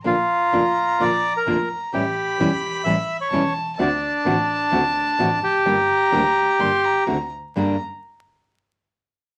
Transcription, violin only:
X:1
M:4/4
L:1/8
Q:1/4=128
K:Gm
V:1 name="Violin"
b8 | =b6 a2 | a8 | b4 c' b2 z |
b z6 z |]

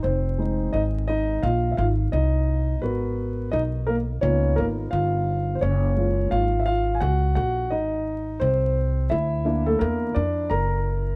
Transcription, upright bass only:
X:1
M:4/4
L:1/8
Q:"Swing 16ths" 1/4=86
K:Fphr
V:1 name="Upright bass" clef=bass
F,,,2 A,,,2 B,,, A,,, C,,2 | A,,,2 _C,,2 D,, A,,, =G,,,2 | G,,,2 A,,,2 D,, B,,, A,,,2 | C,,2 =D,,2 =E,, F,, G,,,2 |]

